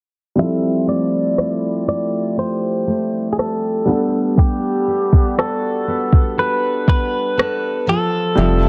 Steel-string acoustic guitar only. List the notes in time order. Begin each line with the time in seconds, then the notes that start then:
0.37 F3
0.87 A3
1.37 E4
1.87 A3
2.37 G4
2.87 A3
3.37 G4
3.87 G3
4.37 G3
4.88 B3
5.38 F#4
5.88 B3
6.38 A4
6.88 B3
7.37 A4
7.87 F3
8.37 F3
8.62 E4